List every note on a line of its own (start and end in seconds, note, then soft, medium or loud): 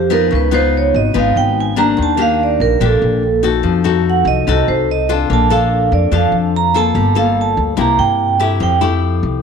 0.00 0.28 F2 medium
0.00 0.29 F3 medium
0.00 0.12 G4 medium
0.10 0.49 B3 medium
0.10 0.49 D#4 medium
0.10 0.49 F4 medium
0.10 0.32 A#4 medium
0.31 0.90 C#2 loud
0.31 1.12 C#3 medium
0.35 0.54 B4 medium
0.51 1.11 B3 medium
0.51 1.11 D#4 medium
0.51 1.12 F4 medium
0.51 0.74 C5 medium
0.77 0.96 C#5 medium
0.94 1.14 G#1 medium
0.94 1.15 D#5 medium
1.14 1.34 G#1 medium
1.14 1.95 G#3 medium
1.14 1.73 B3 medium
1.14 1.74 D#4 medium
1.14 1.74 F4 medium
1.19 1.37 F5 medium
1.36 1.94 G#1 medium
1.36 1.57 G5 medium
1.60 1.79 G#5 medium
1.76 2.15 A#3 medium
1.76 2.15 D4 medium
1.76 2.15 G4 medium
1.76 1.98 A#5 loud
1.97 2.56 D#2 medium
1.97 2.78 D#3 medium
2.03 2.21 A5 medium
2.17 2.77 A#3 medium
2.17 2.77 D4 medium
2.17 2.78 G4 medium
2.22 2.40 F5 medium
2.43 2.62 D5 medium
2.60 2.79 A#1 medium
2.60 2.81 A#4 medium
2.80 3.00 A#1 medium
2.80 3.62 A#2 medium
2.80 3.22 A#3 medium
2.80 3.22 D4 medium
2.80 3.22 G4 medium
2.86 3.42 A4 medium
3.02 3.60 A#1 medium
3.43 3.81 D#4 medium
3.43 3.81 F#4 medium
3.43 3.82 A4 medium
3.63 4.22 F2 medium
3.63 4.44 F3 medium
3.84 4.43 D#4 medium
3.84 4.43 F#4 medium
3.84 4.44 A4 medium
4.10 4.28 F#5 medium
4.25 4.45 C2 medium
4.25 4.65 D#5 medium
4.47 4.66 C2 medium
4.47 5.28 C3 medium
4.47 4.88 D#4 medium
4.47 4.88 F#4 medium
4.47 4.89 A4 medium
4.68 5.26 C2 medium
4.68 4.88 C5 medium
4.91 5.10 D#5 medium
5.09 5.47 D4 medium
5.09 5.47 F4 medium
5.09 5.47 A4 medium
5.30 5.88 A#1 loud
5.30 6.10 A#3 medium
5.30 5.52 A5 loud
5.50 6.09 D4 medium
5.50 6.09 F4 medium
5.50 6.10 A4 medium
5.50 5.90 F5 medium
5.92 6.11 F2 medium
5.92 6.13 D5 medium
6.12 6.31 F2 medium
6.12 6.93 F3 medium
6.12 6.53 D4 medium
6.12 6.54 F4 medium
6.12 6.54 A4 medium
6.16 6.34 F5 medium
6.32 6.91 F2 medium
6.57 6.75 A#5 medium
6.74 7.13 A#3 medium
6.74 7.13 F4 medium
6.74 7.13 A4 medium
6.74 7.14 A5 medium
6.95 7.53 G1 medium
6.95 7.76 G3 medium
7.15 7.75 A#3 medium
7.15 7.75 F4 medium
7.15 7.75 A4 medium
7.15 7.37 F5 medium
7.41 7.59 A5 medium
7.57 7.77 D2 medium
7.77 7.98 C2 medium
7.77 8.58 C3 medium
7.77 8.36 A#3 medium
7.77 8.36 E4 medium
7.77 8.37 G4 medium
7.81 8.00 A#5 medium
7.99 8.57 G2 medium
7.99 8.37 G5 medium
8.40 8.78 A3 medium
8.40 8.78 E4 medium
8.40 8.78 G4 medium
8.40 8.61 E5 medium
8.60 9.19 F2 medium
8.60 9.41 F3 medium
8.60 8.75 G5 medium
8.81 9.40 A3 medium
8.81 9.40 E4 medium
8.81 9.40 G4 medium
9.23 9.42 C2 medium